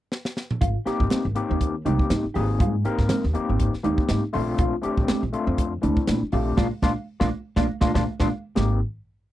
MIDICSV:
0, 0, Header, 1, 6, 480
1, 0, Start_track
1, 0, Key_signature, -4, "major"
1, 0, Tempo, 497100
1, 596, Time_signature, 4, 2, 24, 8
1, 9001, End_track
2, 0, Start_track
2, 0, Title_t, "Clean electric guitar"
2, 0, Program_c, 0, 27
2, 588, Note_on_c, 0, 65, 78
2, 748, Note_off_c, 0, 65, 0
2, 831, Note_on_c, 0, 67, 67
2, 990, Note_off_c, 0, 67, 0
2, 1074, Note_on_c, 0, 60, 75
2, 1231, Note_off_c, 0, 60, 0
2, 1441, Note_on_c, 0, 60, 65
2, 1601, Note_off_c, 0, 60, 0
2, 1791, Note_on_c, 0, 63, 66
2, 1950, Note_off_c, 0, 63, 0
2, 2028, Note_on_c, 0, 63, 73
2, 2188, Note_off_c, 0, 63, 0
2, 2262, Note_on_c, 0, 67, 68
2, 2424, Note_off_c, 0, 67, 0
2, 2511, Note_on_c, 0, 65, 81
2, 2670, Note_off_c, 0, 65, 0
2, 2758, Note_on_c, 0, 67, 73
2, 2915, Note_off_c, 0, 67, 0
2, 2991, Note_on_c, 0, 60, 81
2, 3150, Note_off_c, 0, 60, 0
2, 3373, Note_on_c, 0, 60, 67
2, 3528, Note_off_c, 0, 60, 0
2, 3718, Note_on_c, 0, 63, 71
2, 3874, Note_off_c, 0, 63, 0
2, 3959, Note_on_c, 0, 63, 79
2, 4115, Note_off_c, 0, 63, 0
2, 4201, Note_on_c, 0, 65, 71
2, 4356, Note_off_c, 0, 65, 0
2, 4437, Note_on_c, 0, 65, 84
2, 4594, Note_off_c, 0, 65, 0
2, 4680, Note_on_c, 0, 67, 73
2, 4835, Note_off_c, 0, 67, 0
2, 4913, Note_on_c, 0, 60, 80
2, 5070, Note_off_c, 0, 60, 0
2, 5283, Note_on_c, 0, 60, 72
2, 5441, Note_off_c, 0, 60, 0
2, 5628, Note_on_c, 0, 62, 74
2, 5787, Note_off_c, 0, 62, 0
2, 5865, Note_on_c, 0, 62, 77
2, 6025, Note_off_c, 0, 62, 0
2, 6109, Note_on_c, 0, 65, 74
2, 6267, Note_off_c, 0, 65, 0
2, 6343, Note_on_c, 0, 58, 85
2, 6347, Note_on_c, 0, 62, 88
2, 6349, Note_on_c, 0, 65, 86
2, 6432, Note_off_c, 0, 58, 0
2, 6433, Note_off_c, 0, 65, 0
2, 6434, Note_off_c, 0, 62, 0
2, 6593, Note_on_c, 0, 58, 85
2, 6595, Note_on_c, 0, 62, 91
2, 6600, Note_on_c, 0, 65, 91
2, 6678, Note_off_c, 0, 62, 0
2, 6679, Note_off_c, 0, 58, 0
2, 6679, Note_off_c, 0, 65, 0
2, 6958, Note_on_c, 0, 58, 91
2, 6964, Note_on_c, 0, 62, 91
2, 6970, Note_on_c, 0, 65, 89
2, 7032, Note_off_c, 0, 58, 0
2, 7032, Note_off_c, 0, 62, 0
2, 7034, Note_off_c, 0, 65, 0
2, 7305, Note_on_c, 0, 62, 86
2, 7307, Note_on_c, 0, 58, 87
2, 7308, Note_on_c, 0, 65, 87
2, 7392, Note_off_c, 0, 62, 0
2, 7394, Note_off_c, 0, 65, 0
2, 7395, Note_off_c, 0, 58, 0
2, 7538, Note_on_c, 0, 58, 90
2, 7545, Note_on_c, 0, 65, 88
2, 7546, Note_on_c, 0, 62, 87
2, 7630, Note_off_c, 0, 58, 0
2, 7632, Note_off_c, 0, 62, 0
2, 7633, Note_off_c, 0, 65, 0
2, 7678, Note_on_c, 0, 65, 88
2, 7679, Note_on_c, 0, 58, 89
2, 7681, Note_on_c, 0, 62, 85
2, 7749, Note_off_c, 0, 65, 0
2, 7751, Note_off_c, 0, 58, 0
2, 7752, Note_off_c, 0, 62, 0
2, 7915, Note_on_c, 0, 58, 85
2, 7921, Note_on_c, 0, 62, 86
2, 7923, Note_on_c, 0, 65, 88
2, 7989, Note_off_c, 0, 58, 0
2, 7991, Note_off_c, 0, 62, 0
2, 7991, Note_off_c, 0, 65, 0
2, 8267, Note_on_c, 0, 56, 75
2, 8413, Note_off_c, 0, 56, 0
2, 9001, End_track
3, 0, Start_track
3, 0, Title_t, "Tine electric piano"
3, 0, Program_c, 1, 4
3, 826, Note_on_c, 1, 58, 74
3, 833, Note_on_c, 1, 60, 73
3, 839, Note_on_c, 1, 63, 72
3, 841, Note_on_c, 1, 67, 90
3, 1204, Note_off_c, 1, 58, 0
3, 1208, Note_off_c, 1, 60, 0
3, 1210, Note_off_c, 1, 63, 0
3, 1211, Note_off_c, 1, 67, 0
3, 1306, Note_on_c, 1, 58, 75
3, 1308, Note_on_c, 1, 60, 66
3, 1314, Note_on_c, 1, 63, 72
3, 1316, Note_on_c, 1, 67, 85
3, 1684, Note_off_c, 1, 58, 0
3, 1685, Note_off_c, 1, 60, 0
3, 1688, Note_off_c, 1, 63, 0
3, 1689, Note_off_c, 1, 67, 0
3, 1786, Note_on_c, 1, 58, 69
3, 1792, Note_on_c, 1, 60, 65
3, 1797, Note_on_c, 1, 67, 83
3, 1798, Note_on_c, 1, 63, 66
3, 2164, Note_off_c, 1, 58, 0
3, 2167, Note_off_c, 1, 60, 0
3, 2170, Note_off_c, 1, 63, 0
3, 2170, Note_off_c, 1, 67, 0
3, 2266, Note_on_c, 1, 58, 70
3, 2271, Note_on_c, 1, 60, 68
3, 2276, Note_on_c, 1, 63, 63
3, 2279, Note_on_c, 1, 68, 83
3, 2645, Note_off_c, 1, 58, 0
3, 2647, Note_off_c, 1, 60, 0
3, 2649, Note_off_c, 1, 63, 0
3, 2651, Note_off_c, 1, 68, 0
3, 2750, Note_on_c, 1, 58, 77
3, 2754, Note_on_c, 1, 63, 73
3, 2756, Note_on_c, 1, 60, 73
3, 2757, Note_on_c, 1, 70, 89
3, 3126, Note_off_c, 1, 58, 0
3, 3128, Note_off_c, 1, 63, 0
3, 3129, Note_off_c, 1, 60, 0
3, 3130, Note_off_c, 1, 70, 0
3, 3221, Note_on_c, 1, 58, 77
3, 3228, Note_on_c, 1, 60, 75
3, 3233, Note_on_c, 1, 63, 71
3, 3234, Note_on_c, 1, 67, 83
3, 3601, Note_off_c, 1, 58, 0
3, 3605, Note_off_c, 1, 60, 0
3, 3607, Note_off_c, 1, 63, 0
3, 3608, Note_off_c, 1, 67, 0
3, 3702, Note_on_c, 1, 60, 65
3, 3703, Note_on_c, 1, 58, 70
3, 3704, Note_on_c, 1, 63, 66
3, 3712, Note_on_c, 1, 67, 85
3, 4081, Note_off_c, 1, 60, 0
3, 4082, Note_off_c, 1, 58, 0
3, 4083, Note_off_c, 1, 63, 0
3, 4087, Note_off_c, 1, 67, 0
3, 4180, Note_on_c, 1, 57, 82
3, 4183, Note_on_c, 1, 62, 72
3, 4184, Note_on_c, 1, 60, 81
3, 4185, Note_on_c, 1, 65, 92
3, 4582, Note_off_c, 1, 57, 0
3, 4583, Note_off_c, 1, 62, 0
3, 4584, Note_off_c, 1, 60, 0
3, 4584, Note_off_c, 1, 65, 0
3, 4650, Note_on_c, 1, 57, 79
3, 4656, Note_on_c, 1, 60, 74
3, 4662, Note_on_c, 1, 62, 69
3, 4667, Note_on_c, 1, 67, 84
3, 5035, Note_off_c, 1, 57, 0
3, 5038, Note_off_c, 1, 60, 0
3, 5041, Note_off_c, 1, 62, 0
3, 5043, Note_off_c, 1, 67, 0
3, 5140, Note_on_c, 1, 57, 78
3, 5151, Note_on_c, 1, 60, 72
3, 5151, Note_on_c, 1, 62, 72
3, 5156, Note_on_c, 1, 65, 85
3, 5520, Note_off_c, 1, 57, 0
3, 5525, Note_off_c, 1, 60, 0
3, 5525, Note_off_c, 1, 62, 0
3, 5527, Note_off_c, 1, 65, 0
3, 5618, Note_on_c, 1, 57, 70
3, 5621, Note_on_c, 1, 60, 66
3, 5628, Note_on_c, 1, 62, 68
3, 5629, Note_on_c, 1, 64, 80
3, 5998, Note_off_c, 1, 57, 0
3, 6000, Note_off_c, 1, 60, 0
3, 6003, Note_off_c, 1, 62, 0
3, 6004, Note_off_c, 1, 64, 0
3, 6106, Note_on_c, 1, 57, 72
3, 6108, Note_on_c, 1, 60, 71
3, 6112, Note_on_c, 1, 62, 65
3, 6119, Note_on_c, 1, 67, 79
3, 6332, Note_off_c, 1, 62, 0
3, 6344, Note_on_c, 1, 62, 85
3, 6344, Note_on_c, 1, 65, 86
3, 6345, Note_on_c, 1, 58, 87
3, 6350, Note_off_c, 1, 57, 0
3, 6351, Note_off_c, 1, 60, 0
3, 6357, Note_off_c, 1, 67, 0
3, 6432, Note_off_c, 1, 62, 0
3, 6433, Note_off_c, 1, 58, 0
3, 6433, Note_off_c, 1, 65, 0
3, 6590, Note_on_c, 1, 62, 89
3, 6591, Note_on_c, 1, 58, 91
3, 6593, Note_on_c, 1, 65, 96
3, 6676, Note_off_c, 1, 58, 0
3, 6676, Note_off_c, 1, 62, 0
3, 6678, Note_off_c, 1, 65, 0
3, 6952, Note_on_c, 1, 58, 91
3, 6953, Note_on_c, 1, 62, 92
3, 6954, Note_on_c, 1, 65, 94
3, 7027, Note_off_c, 1, 58, 0
3, 7027, Note_off_c, 1, 62, 0
3, 7027, Note_off_c, 1, 65, 0
3, 7306, Note_on_c, 1, 62, 88
3, 7308, Note_on_c, 1, 65, 84
3, 7310, Note_on_c, 1, 58, 87
3, 7393, Note_off_c, 1, 62, 0
3, 7395, Note_off_c, 1, 65, 0
3, 7396, Note_off_c, 1, 58, 0
3, 7542, Note_on_c, 1, 58, 85
3, 7542, Note_on_c, 1, 62, 84
3, 7544, Note_on_c, 1, 65, 88
3, 7631, Note_off_c, 1, 58, 0
3, 7631, Note_off_c, 1, 62, 0
3, 7632, Note_off_c, 1, 65, 0
3, 7671, Note_on_c, 1, 62, 88
3, 7676, Note_on_c, 1, 58, 84
3, 7676, Note_on_c, 1, 65, 89
3, 7746, Note_off_c, 1, 62, 0
3, 7749, Note_off_c, 1, 58, 0
3, 7749, Note_off_c, 1, 65, 0
3, 7917, Note_on_c, 1, 58, 90
3, 7919, Note_on_c, 1, 62, 93
3, 7919, Note_on_c, 1, 65, 88
3, 7990, Note_off_c, 1, 58, 0
3, 7990, Note_off_c, 1, 62, 0
3, 7991, Note_off_c, 1, 65, 0
3, 8259, Note_on_c, 1, 60, 61
3, 8261, Note_on_c, 1, 58, 73
3, 8264, Note_on_c, 1, 63, 66
3, 8265, Note_on_c, 1, 67, 81
3, 8489, Note_off_c, 1, 60, 0
3, 8490, Note_off_c, 1, 58, 0
3, 8492, Note_off_c, 1, 63, 0
3, 8492, Note_off_c, 1, 67, 0
3, 9001, End_track
4, 0, Start_track
4, 0, Title_t, "Upright bass"
4, 0, Program_c, 2, 32
4, 595, Note_on_c, 2, 32, 83
4, 707, Note_off_c, 2, 32, 0
4, 965, Note_on_c, 2, 32, 82
4, 1058, Note_off_c, 2, 32, 0
4, 1207, Note_on_c, 2, 32, 78
4, 1299, Note_off_c, 2, 32, 0
4, 1454, Note_on_c, 2, 39, 89
4, 1745, Note_off_c, 2, 39, 0
4, 1794, Note_on_c, 2, 36, 84
4, 1907, Note_off_c, 2, 36, 0
4, 2030, Note_on_c, 2, 44, 80
4, 2145, Note_off_c, 2, 44, 0
4, 2278, Note_on_c, 2, 32, 90
4, 2513, Note_on_c, 2, 44, 97
4, 2527, Note_off_c, 2, 32, 0
4, 2717, Note_off_c, 2, 44, 0
4, 2886, Note_on_c, 2, 44, 74
4, 2979, Note_off_c, 2, 44, 0
4, 3131, Note_on_c, 2, 39, 88
4, 3222, Note_off_c, 2, 39, 0
4, 3374, Note_on_c, 2, 32, 78
4, 3574, Note_off_c, 2, 32, 0
4, 3720, Note_on_c, 2, 39, 85
4, 3830, Note_off_c, 2, 39, 0
4, 3962, Note_on_c, 2, 44, 86
4, 4071, Note_off_c, 2, 44, 0
4, 4201, Note_on_c, 2, 34, 87
4, 4401, Note_off_c, 2, 34, 0
4, 4428, Note_on_c, 2, 34, 88
4, 4543, Note_off_c, 2, 34, 0
4, 4804, Note_on_c, 2, 34, 79
4, 4896, Note_off_c, 2, 34, 0
4, 5049, Note_on_c, 2, 34, 75
4, 5139, Note_off_c, 2, 34, 0
4, 5283, Note_on_c, 2, 41, 93
4, 5577, Note_off_c, 2, 41, 0
4, 5635, Note_on_c, 2, 38, 83
4, 5746, Note_off_c, 2, 38, 0
4, 5874, Note_on_c, 2, 46, 85
4, 5986, Note_off_c, 2, 46, 0
4, 6112, Note_on_c, 2, 34, 92
4, 6347, Note_off_c, 2, 34, 0
4, 6353, Note_on_c, 2, 34, 86
4, 6452, Note_off_c, 2, 34, 0
4, 6594, Note_on_c, 2, 34, 83
4, 6692, Note_off_c, 2, 34, 0
4, 6962, Note_on_c, 2, 34, 92
4, 7044, Note_off_c, 2, 34, 0
4, 7308, Note_on_c, 2, 34, 91
4, 7409, Note_off_c, 2, 34, 0
4, 7550, Note_on_c, 2, 34, 87
4, 7650, Note_off_c, 2, 34, 0
4, 7680, Note_on_c, 2, 34, 97
4, 7763, Note_off_c, 2, 34, 0
4, 7917, Note_on_c, 2, 34, 89
4, 8001, Note_off_c, 2, 34, 0
4, 8277, Note_on_c, 2, 32, 90
4, 8499, Note_off_c, 2, 32, 0
4, 9001, End_track
5, 0, Start_track
5, 0, Title_t, "Muted upright bass strokes"
5, 830, Note_on_c, 9, 29, 33
5, 927, Note_off_c, 9, 29, 0
5, 2172, Note_on_c, 9, 29, 33
5, 2268, Note_off_c, 9, 29, 0
5, 2763, Note_on_c, 9, 29, 32
5, 2860, Note_off_c, 9, 29, 0
5, 3007, Note_on_c, 9, 29, 33
5, 3104, Note_off_c, 9, 29, 0
5, 3240, Note_on_c, 9, 29, 36
5, 3337, Note_off_c, 9, 29, 0
5, 3613, Note_on_c, 9, 29, 34
5, 3710, Note_off_c, 9, 29, 0
5, 3841, Note_on_c, 9, 29, 35
5, 3938, Note_off_c, 9, 29, 0
5, 4680, Note_on_c, 9, 29, 34
5, 4777, Note_off_c, 9, 29, 0
5, 4919, Note_on_c, 9, 29, 38
5, 5016, Note_off_c, 9, 29, 0
5, 6006, Note_on_c, 9, 29, 36
5, 6102, Note_off_c, 9, 29, 0
5, 9001, End_track
6, 0, Start_track
6, 0, Title_t, "Drums"
6, 113, Note_on_c, 9, 38, 62
6, 210, Note_off_c, 9, 38, 0
6, 243, Note_on_c, 9, 38, 72
6, 339, Note_off_c, 9, 38, 0
6, 355, Note_on_c, 9, 38, 74
6, 452, Note_off_c, 9, 38, 0
6, 488, Note_on_c, 9, 45, 91
6, 585, Note_off_c, 9, 45, 0
6, 592, Note_on_c, 9, 62, 27
6, 594, Note_on_c, 9, 36, 102
6, 596, Note_on_c, 9, 42, 78
6, 689, Note_off_c, 9, 62, 0
6, 691, Note_off_c, 9, 36, 0
6, 692, Note_off_c, 9, 42, 0
6, 838, Note_on_c, 9, 38, 29
6, 838, Note_on_c, 9, 42, 59
6, 934, Note_off_c, 9, 38, 0
6, 934, Note_off_c, 9, 42, 0
6, 967, Note_on_c, 9, 36, 72
6, 1063, Note_off_c, 9, 36, 0
6, 1065, Note_on_c, 9, 63, 95
6, 1073, Note_on_c, 9, 38, 103
6, 1073, Note_on_c, 9, 42, 83
6, 1162, Note_off_c, 9, 63, 0
6, 1170, Note_off_c, 9, 38, 0
6, 1170, Note_off_c, 9, 42, 0
6, 1309, Note_on_c, 9, 42, 65
6, 1318, Note_on_c, 9, 62, 26
6, 1405, Note_off_c, 9, 42, 0
6, 1414, Note_off_c, 9, 62, 0
6, 1552, Note_on_c, 9, 36, 71
6, 1553, Note_on_c, 9, 42, 78
6, 1555, Note_on_c, 9, 62, 27
6, 1649, Note_off_c, 9, 36, 0
6, 1650, Note_off_c, 9, 42, 0
6, 1652, Note_off_c, 9, 62, 0
6, 1793, Note_on_c, 9, 62, 30
6, 1793, Note_on_c, 9, 63, 69
6, 1796, Note_on_c, 9, 42, 68
6, 1890, Note_off_c, 9, 62, 0
6, 1890, Note_off_c, 9, 63, 0
6, 1893, Note_off_c, 9, 42, 0
6, 1925, Note_on_c, 9, 36, 77
6, 2022, Note_off_c, 9, 36, 0
6, 2029, Note_on_c, 9, 38, 102
6, 2029, Note_on_c, 9, 42, 77
6, 2037, Note_on_c, 9, 63, 73
6, 2126, Note_off_c, 9, 38, 0
6, 2126, Note_off_c, 9, 42, 0
6, 2133, Note_off_c, 9, 63, 0
6, 2270, Note_on_c, 9, 46, 70
6, 2367, Note_off_c, 9, 46, 0
6, 2511, Note_on_c, 9, 42, 76
6, 2512, Note_on_c, 9, 36, 104
6, 2517, Note_on_c, 9, 62, 26
6, 2608, Note_off_c, 9, 42, 0
6, 2609, Note_off_c, 9, 36, 0
6, 2613, Note_off_c, 9, 62, 0
6, 2752, Note_on_c, 9, 42, 54
6, 2848, Note_off_c, 9, 42, 0
6, 2881, Note_on_c, 9, 38, 31
6, 2883, Note_on_c, 9, 36, 73
6, 2978, Note_off_c, 9, 38, 0
6, 2980, Note_off_c, 9, 36, 0
6, 2984, Note_on_c, 9, 38, 104
6, 2984, Note_on_c, 9, 42, 78
6, 2990, Note_on_c, 9, 63, 81
6, 2990, Note_on_c, 9, 64, 61
6, 3081, Note_off_c, 9, 38, 0
6, 3081, Note_off_c, 9, 42, 0
6, 3087, Note_off_c, 9, 63, 0
6, 3087, Note_off_c, 9, 64, 0
6, 3123, Note_on_c, 9, 38, 33
6, 3219, Note_off_c, 9, 38, 0
6, 3231, Note_on_c, 9, 42, 61
6, 3231, Note_on_c, 9, 62, 26
6, 3327, Note_off_c, 9, 62, 0
6, 3328, Note_off_c, 9, 42, 0
6, 3471, Note_on_c, 9, 62, 27
6, 3472, Note_on_c, 9, 36, 69
6, 3472, Note_on_c, 9, 42, 72
6, 3568, Note_off_c, 9, 36, 0
6, 3568, Note_off_c, 9, 62, 0
6, 3569, Note_off_c, 9, 42, 0
6, 3606, Note_on_c, 9, 38, 32
6, 3703, Note_off_c, 9, 38, 0
6, 3708, Note_on_c, 9, 62, 28
6, 3708, Note_on_c, 9, 63, 67
6, 3711, Note_on_c, 9, 42, 59
6, 3804, Note_off_c, 9, 62, 0
6, 3804, Note_off_c, 9, 63, 0
6, 3807, Note_off_c, 9, 42, 0
6, 3842, Note_on_c, 9, 36, 76
6, 3939, Note_off_c, 9, 36, 0
6, 3945, Note_on_c, 9, 38, 100
6, 3945, Note_on_c, 9, 42, 73
6, 3946, Note_on_c, 9, 63, 71
6, 4042, Note_off_c, 9, 38, 0
6, 4042, Note_off_c, 9, 42, 0
6, 4043, Note_off_c, 9, 63, 0
6, 4185, Note_on_c, 9, 46, 73
6, 4281, Note_off_c, 9, 46, 0
6, 4424, Note_on_c, 9, 42, 75
6, 4430, Note_on_c, 9, 36, 108
6, 4431, Note_on_c, 9, 62, 28
6, 4521, Note_off_c, 9, 42, 0
6, 4526, Note_off_c, 9, 36, 0
6, 4528, Note_off_c, 9, 62, 0
6, 4667, Note_on_c, 9, 42, 55
6, 4763, Note_off_c, 9, 42, 0
6, 4804, Note_on_c, 9, 36, 73
6, 4900, Note_off_c, 9, 36, 0
6, 4908, Note_on_c, 9, 38, 113
6, 4908, Note_on_c, 9, 42, 78
6, 4911, Note_on_c, 9, 63, 89
6, 5005, Note_off_c, 9, 38, 0
6, 5005, Note_off_c, 9, 42, 0
6, 5008, Note_off_c, 9, 63, 0
6, 5151, Note_on_c, 9, 42, 65
6, 5158, Note_on_c, 9, 62, 28
6, 5248, Note_off_c, 9, 42, 0
6, 5254, Note_off_c, 9, 62, 0
6, 5389, Note_on_c, 9, 42, 80
6, 5391, Note_on_c, 9, 36, 70
6, 5398, Note_on_c, 9, 62, 28
6, 5486, Note_off_c, 9, 42, 0
6, 5488, Note_off_c, 9, 36, 0
6, 5494, Note_off_c, 9, 62, 0
6, 5630, Note_on_c, 9, 42, 66
6, 5636, Note_on_c, 9, 62, 30
6, 5636, Note_on_c, 9, 63, 74
6, 5727, Note_off_c, 9, 42, 0
6, 5733, Note_off_c, 9, 62, 0
6, 5733, Note_off_c, 9, 63, 0
6, 5762, Note_on_c, 9, 36, 77
6, 5858, Note_off_c, 9, 36, 0
6, 5866, Note_on_c, 9, 38, 100
6, 5866, Note_on_c, 9, 42, 78
6, 5872, Note_on_c, 9, 63, 77
6, 5962, Note_off_c, 9, 38, 0
6, 5962, Note_off_c, 9, 42, 0
6, 5968, Note_off_c, 9, 63, 0
6, 6103, Note_on_c, 9, 46, 70
6, 6200, Note_off_c, 9, 46, 0
6, 6348, Note_on_c, 9, 38, 87
6, 6348, Note_on_c, 9, 63, 94
6, 6351, Note_on_c, 9, 36, 83
6, 6444, Note_off_c, 9, 63, 0
6, 6445, Note_off_c, 9, 38, 0
6, 6448, Note_off_c, 9, 36, 0
6, 6588, Note_on_c, 9, 63, 96
6, 6592, Note_on_c, 9, 36, 85
6, 6592, Note_on_c, 9, 38, 85
6, 6685, Note_off_c, 9, 63, 0
6, 6688, Note_off_c, 9, 38, 0
6, 6689, Note_off_c, 9, 36, 0
6, 6959, Note_on_c, 9, 38, 89
6, 6963, Note_on_c, 9, 36, 88
6, 6964, Note_on_c, 9, 63, 87
6, 7056, Note_off_c, 9, 38, 0
6, 7059, Note_off_c, 9, 36, 0
6, 7061, Note_off_c, 9, 63, 0
6, 7302, Note_on_c, 9, 38, 80
6, 7307, Note_on_c, 9, 63, 88
6, 7308, Note_on_c, 9, 36, 82
6, 7399, Note_off_c, 9, 38, 0
6, 7404, Note_off_c, 9, 63, 0
6, 7405, Note_off_c, 9, 36, 0
6, 7543, Note_on_c, 9, 38, 93
6, 7548, Note_on_c, 9, 36, 90
6, 7549, Note_on_c, 9, 63, 98
6, 7640, Note_off_c, 9, 38, 0
6, 7644, Note_off_c, 9, 36, 0
6, 7646, Note_off_c, 9, 63, 0
6, 7678, Note_on_c, 9, 38, 93
6, 7680, Note_on_c, 9, 63, 94
6, 7681, Note_on_c, 9, 36, 92
6, 7775, Note_off_c, 9, 38, 0
6, 7776, Note_off_c, 9, 63, 0
6, 7777, Note_off_c, 9, 36, 0
6, 7914, Note_on_c, 9, 38, 88
6, 7920, Note_on_c, 9, 36, 93
6, 7924, Note_on_c, 9, 63, 84
6, 8011, Note_off_c, 9, 38, 0
6, 8016, Note_off_c, 9, 36, 0
6, 8021, Note_off_c, 9, 63, 0
6, 8265, Note_on_c, 9, 62, 77
6, 8269, Note_on_c, 9, 38, 88
6, 8361, Note_off_c, 9, 62, 0
6, 8365, Note_off_c, 9, 38, 0
6, 9001, End_track
0, 0, End_of_file